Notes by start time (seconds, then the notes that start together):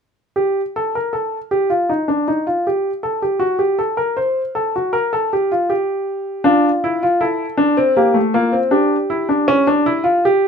0.36 G4
0.76 A4
0.95 A#4
1.13 A4
1.51 G4
1.70 F4
1.89 D#4
2.08 D4
2.28 D#4
2.47 F4
2.67 G4
3.03 A4
3.22 G4
3.40 F#4
3.59 G4
3.79 A4
3.97 A#4
4.17 C5
4.55 A4
4.76 F#4
4.93 A#4
5.13 A4
5.33 G4
5.52 F4
5.70 G4
6.44 D4 F4
6.84 E4
7.03 F4
7.21 E4 A4
7.57 D4
7.77 C4
7.97 A#3 G4
8.14 A3
8.34 A#3 F4
8.53 C4
8.71 D4 G4
9.10 E4
9.29 D4
9.48 C#4
9.67 D4
9.86 E4
10.04 F4
10.25 G4